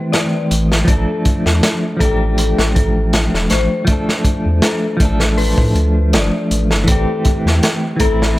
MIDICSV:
0, 0, Header, 1, 5, 480
1, 0, Start_track
1, 0, Tempo, 750000
1, 564, Time_signature, 4, 2, 24, 8
1, 5370, End_track
2, 0, Start_track
2, 0, Title_t, "Synth bell"
2, 0, Program_c, 0, 98
2, 0, Control_c, 0, 64, 127
2, 0, Note_on_c, 0, 69, 73
2, 0, Note_on_c, 0, 71, 76
2, 79, Note_on_c, 0, 74, 67
2, 310, Note_off_c, 0, 74, 0
2, 560, Note_off_c, 0, 69, 0
2, 560, Note_on_c, 0, 69, 77
2, 573, Control_c, 0, 64, 0
2, 579, Note_off_c, 0, 71, 0
2, 701, Control_c, 0, 64, 127
2, 1259, Note_off_c, 0, 69, 0
2, 1283, Note_on_c, 0, 69, 103
2, 1512, Note_off_c, 0, 69, 0
2, 1761, Note_on_c, 0, 69, 70
2, 1991, Note_off_c, 0, 69, 0
2, 2243, Note_on_c, 0, 72, 76
2, 2941, Note_off_c, 0, 72, 0
2, 2964, Note_on_c, 0, 69, 74
2, 3422, Note_off_c, 0, 69, 0
2, 3440, Note_on_c, 0, 71, 79
2, 3671, Note_off_c, 0, 71, 0
2, 3924, Note_on_c, 0, 74, 70
2, 4153, Note_off_c, 0, 74, 0
2, 4402, Note_on_c, 0, 69, 76
2, 4411, Control_c, 0, 64, 0
2, 4528, Control_c, 0, 64, 127
2, 5101, Note_off_c, 0, 69, 0
2, 5123, Note_on_c, 0, 69, 99
2, 5352, Note_off_c, 0, 69, 0
2, 5370, End_track
3, 0, Start_track
3, 0, Title_t, "Clean electric guitar"
3, 0, Program_c, 1, 27
3, 0, Note_on_c, 1, 52, 93
3, 0, Note_on_c, 1, 57, 83
3, 0, Note_on_c, 1, 60, 89
3, 0, Note_on_c, 1, 67, 101
3, 526, Note_off_c, 1, 52, 0
3, 535, Note_off_c, 1, 57, 0
3, 540, Note_on_c, 1, 53, 80
3, 544, Note_off_c, 1, 60, 0
3, 553, Note_off_c, 1, 67, 0
3, 555, Note_on_c, 1, 57, 75
3, 575, Note_on_c, 1, 62, 76
3, 592, Note_on_c, 1, 69, 85
3, 1245, Note_off_c, 1, 53, 0
3, 1253, Note_off_c, 1, 57, 0
3, 1258, Note_on_c, 1, 53, 75
3, 1263, Note_off_c, 1, 62, 0
3, 1271, Note_off_c, 1, 69, 0
3, 1277, Note_on_c, 1, 57, 67
3, 1294, Note_on_c, 1, 62, 68
3, 1311, Note_on_c, 1, 67, 83
3, 2444, Note_off_c, 1, 53, 0
3, 2453, Note_off_c, 1, 57, 0
3, 2462, Note_off_c, 1, 62, 0
3, 2462, Note_on_c, 1, 53, 71
3, 2470, Note_off_c, 1, 67, 0
3, 2480, Note_on_c, 1, 57, 70
3, 2497, Note_on_c, 1, 62, 66
3, 2513, Note_on_c, 1, 69, 75
3, 3166, Note_off_c, 1, 53, 0
3, 3175, Note_off_c, 1, 57, 0
3, 3179, Note_on_c, 1, 53, 88
3, 3184, Note_off_c, 1, 62, 0
3, 3192, Note_off_c, 1, 69, 0
3, 3198, Note_on_c, 1, 57, 84
3, 3216, Note_on_c, 1, 62, 86
3, 3233, Note_on_c, 1, 69, 105
3, 4365, Note_off_c, 1, 53, 0
3, 4374, Note_off_c, 1, 57, 0
3, 4377, Note_on_c, 1, 52, 77
3, 4383, Note_off_c, 1, 62, 0
3, 4391, Note_off_c, 1, 69, 0
3, 4393, Note_on_c, 1, 57, 73
3, 4409, Note_on_c, 1, 60, 71
3, 4428, Note_on_c, 1, 67, 91
3, 5084, Note_off_c, 1, 52, 0
3, 5092, Note_off_c, 1, 57, 0
3, 5097, Note_on_c, 1, 52, 77
3, 5100, Note_off_c, 1, 60, 0
3, 5109, Note_off_c, 1, 67, 0
3, 5116, Note_on_c, 1, 57, 70
3, 5131, Note_on_c, 1, 60, 69
3, 5151, Note_on_c, 1, 64, 83
3, 5370, Note_off_c, 1, 52, 0
3, 5370, Note_off_c, 1, 57, 0
3, 5370, Note_off_c, 1, 60, 0
3, 5370, Note_off_c, 1, 64, 0
3, 5370, End_track
4, 0, Start_track
4, 0, Title_t, "Sub bass"
4, 0, Program_c, 2, 38
4, 327, Note_on_c, 2, 33, 93
4, 539, Note_off_c, 2, 33, 0
4, 563, Note_on_c, 2, 33, 88
4, 676, Note_off_c, 2, 33, 0
4, 934, Note_on_c, 2, 40, 87
4, 1031, Note_off_c, 2, 40, 0
4, 1284, Note_on_c, 2, 33, 105
4, 1627, Note_off_c, 2, 33, 0
4, 1654, Note_on_c, 2, 33, 98
4, 2108, Note_off_c, 2, 33, 0
4, 2136, Note_on_c, 2, 28, 96
4, 2232, Note_off_c, 2, 28, 0
4, 2248, Note_on_c, 2, 33, 89
4, 2359, Note_off_c, 2, 33, 0
4, 2851, Note_on_c, 2, 40, 93
4, 2950, Note_off_c, 2, 40, 0
4, 3204, Note_on_c, 2, 33, 96
4, 3548, Note_off_c, 2, 33, 0
4, 3573, Note_on_c, 2, 45, 84
4, 3671, Note_off_c, 2, 45, 0
4, 3679, Note_on_c, 2, 38, 97
4, 3926, Note_on_c, 2, 31, 90
4, 3936, Note_off_c, 2, 38, 0
4, 4038, Note_off_c, 2, 31, 0
4, 4166, Note_on_c, 2, 33, 80
4, 4296, Note_on_c, 2, 31, 86
4, 4306, Note_off_c, 2, 33, 0
4, 4392, Note_off_c, 2, 31, 0
4, 4403, Note_on_c, 2, 33, 93
4, 4516, Note_off_c, 2, 33, 0
4, 4772, Note_on_c, 2, 40, 91
4, 4870, Note_off_c, 2, 40, 0
4, 5121, Note_on_c, 2, 33, 96
4, 5370, Note_off_c, 2, 33, 0
4, 5370, End_track
5, 0, Start_track
5, 0, Title_t, "Drums"
5, 85, Note_on_c, 9, 42, 76
5, 89, Note_on_c, 9, 38, 99
5, 149, Note_off_c, 9, 42, 0
5, 153, Note_off_c, 9, 38, 0
5, 327, Note_on_c, 9, 42, 68
5, 391, Note_off_c, 9, 42, 0
5, 459, Note_on_c, 9, 38, 57
5, 523, Note_off_c, 9, 38, 0
5, 561, Note_on_c, 9, 42, 78
5, 562, Note_on_c, 9, 36, 110
5, 625, Note_off_c, 9, 42, 0
5, 626, Note_off_c, 9, 36, 0
5, 801, Note_on_c, 9, 42, 61
5, 804, Note_on_c, 9, 36, 100
5, 865, Note_off_c, 9, 42, 0
5, 868, Note_off_c, 9, 36, 0
5, 934, Note_on_c, 9, 38, 48
5, 998, Note_off_c, 9, 38, 0
5, 1044, Note_on_c, 9, 38, 102
5, 1044, Note_on_c, 9, 42, 92
5, 1108, Note_off_c, 9, 38, 0
5, 1108, Note_off_c, 9, 42, 0
5, 1282, Note_on_c, 9, 36, 87
5, 1285, Note_on_c, 9, 42, 67
5, 1346, Note_off_c, 9, 36, 0
5, 1349, Note_off_c, 9, 42, 0
5, 1522, Note_on_c, 9, 42, 85
5, 1586, Note_off_c, 9, 42, 0
5, 1654, Note_on_c, 9, 38, 61
5, 1718, Note_off_c, 9, 38, 0
5, 1766, Note_on_c, 9, 42, 59
5, 1767, Note_on_c, 9, 36, 98
5, 1830, Note_off_c, 9, 42, 0
5, 1831, Note_off_c, 9, 36, 0
5, 2004, Note_on_c, 9, 42, 77
5, 2007, Note_on_c, 9, 38, 102
5, 2068, Note_off_c, 9, 42, 0
5, 2071, Note_off_c, 9, 38, 0
5, 2141, Note_on_c, 9, 38, 44
5, 2205, Note_off_c, 9, 38, 0
5, 2238, Note_on_c, 9, 42, 68
5, 2245, Note_on_c, 9, 38, 45
5, 2302, Note_off_c, 9, 42, 0
5, 2309, Note_off_c, 9, 38, 0
5, 2476, Note_on_c, 9, 42, 75
5, 2482, Note_on_c, 9, 36, 103
5, 2540, Note_off_c, 9, 42, 0
5, 2546, Note_off_c, 9, 36, 0
5, 2617, Note_on_c, 9, 38, 43
5, 2681, Note_off_c, 9, 38, 0
5, 2717, Note_on_c, 9, 36, 84
5, 2717, Note_on_c, 9, 42, 64
5, 2781, Note_off_c, 9, 36, 0
5, 2781, Note_off_c, 9, 42, 0
5, 2958, Note_on_c, 9, 38, 111
5, 2960, Note_on_c, 9, 42, 82
5, 3022, Note_off_c, 9, 38, 0
5, 3024, Note_off_c, 9, 42, 0
5, 3200, Note_on_c, 9, 42, 64
5, 3201, Note_on_c, 9, 36, 95
5, 3264, Note_off_c, 9, 42, 0
5, 3265, Note_off_c, 9, 36, 0
5, 3328, Note_on_c, 9, 38, 52
5, 3392, Note_off_c, 9, 38, 0
5, 3441, Note_on_c, 9, 46, 81
5, 3505, Note_off_c, 9, 46, 0
5, 3570, Note_on_c, 9, 36, 93
5, 3634, Note_off_c, 9, 36, 0
5, 3683, Note_on_c, 9, 42, 68
5, 3747, Note_off_c, 9, 42, 0
5, 3924, Note_on_c, 9, 42, 83
5, 3929, Note_on_c, 9, 38, 103
5, 3988, Note_off_c, 9, 42, 0
5, 3993, Note_off_c, 9, 38, 0
5, 4167, Note_on_c, 9, 42, 68
5, 4231, Note_off_c, 9, 42, 0
5, 4292, Note_on_c, 9, 38, 50
5, 4356, Note_off_c, 9, 38, 0
5, 4401, Note_on_c, 9, 42, 97
5, 4402, Note_on_c, 9, 36, 110
5, 4465, Note_off_c, 9, 42, 0
5, 4466, Note_off_c, 9, 36, 0
5, 4638, Note_on_c, 9, 42, 64
5, 4643, Note_on_c, 9, 36, 93
5, 4702, Note_off_c, 9, 42, 0
5, 4707, Note_off_c, 9, 36, 0
5, 4781, Note_on_c, 9, 38, 44
5, 4845, Note_off_c, 9, 38, 0
5, 4882, Note_on_c, 9, 42, 83
5, 4886, Note_on_c, 9, 38, 114
5, 4946, Note_off_c, 9, 42, 0
5, 4950, Note_off_c, 9, 38, 0
5, 5118, Note_on_c, 9, 42, 69
5, 5121, Note_on_c, 9, 36, 92
5, 5182, Note_off_c, 9, 42, 0
5, 5185, Note_off_c, 9, 36, 0
5, 5261, Note_on_c, 9, 38, 43
5, 5325, Note_off_c, 9, 38, 0
5, 5370, End_track
0, 0, End_of_file